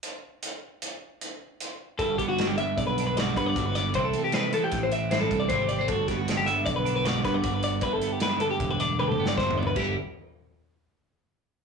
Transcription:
<<
  \new Staff \with { instrumentName = "Clean electric guitar" } { \time 5/4 \key g \major \tempo 4 = 154 r1 r4 | a'8 g'16 fis'8 g'16 e''8 d''16 b'8 b'16 d''8 b'16 d''8 b'16 d''8 | c''16 a'8 g'16 b'8 a'16 g'8 c''16 e''8 c''16 a'8 d''16 c''8 d''16 c''16 | a'8 g'16 fis'8 g'16 e''8 d''16 b'8 b'16 d''8 b'16 d''8 b'16 d''8 |
b'16 a'8 g'16 b'8 a'16 g'8 b'16 d''8 b'16 a'8 d''16 c''8 d''16 b'16 | g'8 r1 r8 | }
  \new Staff \with { instrumentName = "Clean electric guitar" } { \time 5/4 \key g \major << { r1 r4 | e'16 fis'16 b8 d'8 b4 d'8 fis'8 b8 fis'8 b8 | <e a c' e'>8 a8 c'8 a4 c'8 e'8 a8 e'16 g'16 g16 a16 | fis'8 b8 d'8 b4 d'8 fis'8 b8 fis'8 b8 |
e'8 b8 d'8 b4 d'8 g'8 b8 e'8 b8 | <d b d' e'>8 r1 r8 | } \\ { r1 r4 | g,4. d4. g,4 g,4 | c4. e4. g,4 c4 | g,4. d4. g,4 g,4 |
g,4. d4. g,4 g,4 | g,8 r1 r8 | } >> }
  \new Staff \with { instrumentName = "Picked electric bass" } { \clef bass \time 5/4 \key g \major r1 r4 | g,,8 g,,4. b,,4. g,8 g,,4 | c,8 r4. a,,4. c,8 aes,,4 | g,,8 g,,4. b,,4. g,8 g,,4 |
g,,8 r4. e,,4. g,,8 g,,4 | g,,8 r1 r8 | }
  \new DrumStaff \with { instrumentName = "Drums" } \drummode { \time 5/4 hh4 hh4 hh4 hh4 hh4 | <hh bd>8 <hh bd>8 <hh sn>8 hh8 <hh bd>8 hh8 <hh sn>8 <hh bd>8 <hh bd sn>8 <hh sn>8 | <hh bd>8 hh8 <hh sn>8 hh8 <hh bd sn>8 hh8 <hh sn>8 <hh bd>8 <hh bd sn>8 hh8 | <hh bd>8 <hh bd sn>8 <hh sn>8 hh8 <hh bd>8 hh8 <hh sn>8 <hh bd sn>8 <hh bd>8 hh8 |
<hh bd>8 hh8 <hh sn>8 hh8 <hh bd>8 hh8 \tuplet 3/2 { tommh8 tommh8 sn8 <bd sn>8 tomfh8 tomfh8 } | <cymc bd>4 r4 r4 r4 r4 | }
>>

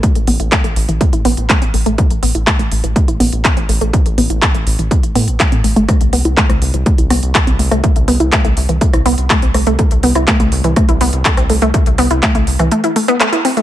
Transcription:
<<
  \new Staff \with { instrumentName = "Synth arpeggio sound" } { \time 4/4 \key a \minor \tempo 4 = 123 a16 r16 b16 e'16 a16 a16 r16 e16 a16 e'16 b16 r16 a16 c'16 a16 a16 | a16 r16 b16 e'16 a16 a16 r16 e16 a16 e'16 b16 r16 a16 c'16 a16 a16 | a16 r16 b16 e'16 a16 a16 r16 e16 a16 e'16 b16 r16 a16 c'16 a16 a16 | a16 r16 b16 e'16 a16 a16 r16 e16 a16 e'16 b16 r16 a16 c'16 a16 a16 |
a16 r16 b16 e'16 a16 a16 r16 e16 a16 e'16 b16 r16 a16 c'16 a16 a16 | a16 r16 b16 e'16 a16 a16 r16 e16 a16 e'16 b16 r16 a16 c'16 a16 a16 | a16 r16 b16 e'16 a16 a16 r16 e16 a16 e'16 a16 b16 a16 e'16 c'16 a16 | }
  \new Staff \with { instrumentName = "Analog synth bass" } { \clef bass \time 4/4 \key a \minor r16 a,,16 a,,16 a,,16 r16 a,,16 a,,16 a,,16 r16 a,,16 a,,16 a,,16 r16 a,,16 a,,16 a,,16 | r16 a,,16 a,,16 a,,16 r16 a,,16 a,,16 a,,16 r16 a,,16 a,,16 a,,16 r16 a,,16 a,,16 a,,16 | r16 a,,16 a,,16 a,,16 r16 a,,16 a,,16 a,,16 r16 a,,16 a,16 a,,16 r16 a,16 a,,16 g,,16 | r16 c,16 c,16 c,16 r16 c,16 c,16 c,16 r16 c,16 c,16 c,16 r16 c,16 c,16 c,16 |
r16 c,16 c,16 c,16 r16 c,16 c,16 c,16 r16 c,16 c,16 c,16 r16 c,16 c,16 c,16 | r16 c,16 c,16 c,16 r16 c,16 c,16 c,16 r16 c,16 c,16 c,16 r16 c,16 c,16 c,16 | r16 c,16 c,16 c,16 r16 c,16 c,16 c,16 r2 | }
  \new DrumStaff \with { instrumentName = "Drums" } \drummode { \time 4/4 <hh bd>16 hh16 hho16 hh16 <hc hh bd>16 hh16 hho16 hh16 <hh bd>16 hh16 hho16 hh16 <hc hh bd>16 hh16 hho16 hh16 | <hh bd>16 hh16 hho16 hh16 <hc hh bd>16 hh16 hho16 hh16 <hh bd>16 hh16 hho16 hh16 <hc hh bd>16 hh16 hho16 hh16 | <hh bd>16 hh16 hho16 hh16 <hc hh bd>16 hh16 hho16 hh16 <hh bd>16 hh16 hho16 hh16 <hc hh bd>16 hh16 hho16 hh16 | <hh bd ss>16 hh16 hho16 hh16 <hc hh bd>16 <hh ss>16 hho16 hh16 <hh bd>16 hh16 <hho ss>16 hh16 <hc hh bd>16 hh16 hho16 <hh ss>16 |
<hh bd>16 hh16 hho16 hh16 <hc hh bd ss>16 hh16 hho16 hh16 <hh bd>16 <hh ss>16 hho16 hh16 <hc hh bd>16 hh16 <hho ss>16 hh16 | <hh bd>16 hh16 hho16 <hh ss>16 <hc hh bd>16 hh16 hho16 hh16 <hh bd ss>16 hh16 hho16 hh16 <hc hh bd>16 <hh ss>16 hho16 hh16 | <hh bd>16 hh16 <hho ss>16 hh16 <hc hh bd>16 hh16 hho16 <hh ss>16 hh16 hh16 hho16 hh16 <hc hh ss>16 hh16 hho16 hh16 | }
>>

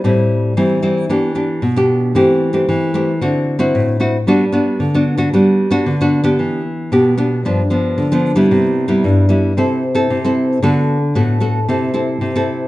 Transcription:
\new Staff \with { instrumentName = "Nylon-string guitar" } { \time 4/4 \key g \major \tempo 4 = 113 << { <g c' e'>4 <g c' e'>8 <g c' e'>8 <b d' g'>8 <b d' g'>8 r16 <b d' g'>8. | <a c' g'>8. <a c' g'>8. <a c' g'>16 r16 <c' e' fis'>8. <c' e' fis'>8. <c' e' fis'>16 r16 | <b d' fis'>16 r16 <b d' fis'>8. <b d' fis'>8 <b d' fis'>16 <b d' fis'>8. <b d' fis'>8 <b d' fis'>8 <b d' g'>16~ | \key e \minor <b d' g'>8 r8 <b d' g'>8 <b d' g'>8 <f b d'>16 r16 <f b d'>8. <f b d'>8 <g b e'>16~ |
<g b e'>8. <g b e'>8. <g b e'>8 <c' e' a'>8 r16 <c' e' a'>8 <c' e' a'>8. | <b fis' a'>8. r16 <b fis' a'>8 <b fis' a'>16 r16 <c' e' a'>8 <c' e' a'>8. <c' e' a'>8. | } \\ { a,4 e4 e4 b,4 | e4 e4 d4 a,4 | g4 d4 g4 d4 | e4 b,4 g,4 d4 |
c4 g,4 c4 c4 | d4 a,4 c4 c4 | } >> }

